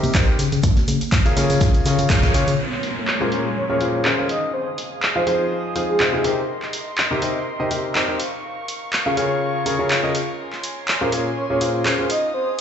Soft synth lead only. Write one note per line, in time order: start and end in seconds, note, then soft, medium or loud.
3.21 3.32 A#4 medium
3.56 3.65 C#5 medium
3.69 3.76 C#5 medium
4.29 4.52 D#5 loud
4.54 4.67 C5 medium
5.16 5.23 C5 medium
5.27 5.35 C5 medium
5.89 6.30 G#4 medium
11.01 11.12 A#4 medium
11.37 11.45 C#5 medium
11.50 11.57 C#5 medium
12.10 12.32 D#5 medium
12.34 12.48 C5 medium